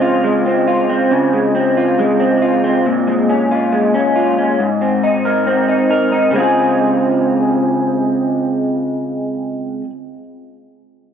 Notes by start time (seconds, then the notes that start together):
Already playing: C#3 G#3 C4
0.01 F4
0.24 G#3
0.46 C4
0.67 F4
0.89 C4
1.11 C#3
1.33 G#3
1.55 C4
1.77 F4
1.99 G#3
2.20 C4
2.42 F4
2.64 C4
2.86 A#2
3.07 G#3
3.29 C#4
3.51 F4
3.73 G#3
3.94 C#4
4.16 F4
4.38 C#4
4.59 G#2
4.81 C4
5.03 D#4
5.25 A#4
5.47 C4
5.69 D#4
5.90 A#4
6.12 D#4
6.31 C#3 G#3
6.36 C4 F4
6.40 G#4